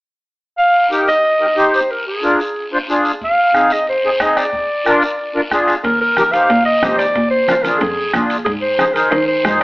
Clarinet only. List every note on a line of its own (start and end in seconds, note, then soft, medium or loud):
0.58 0.89 F5 medium
1.08 1.70 D#5 medium
1.74 1.92 C5 medium
1.91 2.07 A#4 medium
2.07 2.68 G#4 medium
3.24 3.74 F5 medium
3.72 3.88 D#5 medium
3.89 4.23 C5 medium
4.22 4.39 D#5 medium
4.37 5.52 D5 medium
5.84 5.99 A#4 medium
6.01 6.34 A#4 medium
6.32 6.65 F5 loud
6.65 6.96 D#5 medium
6.98 7.29 D5 medium
7.31 7.64 C5 medium
7.63 7.80 A#4 medium
7.78 8.29 G#4 medium
8.44 8.52 G#4 medium
8.61 8.95 C5 medium
8.94 9.12 A#4 medium
9.10 9.26 C5 medium
9.27 9.58 C5 medium
9.60 9.64 D5 medium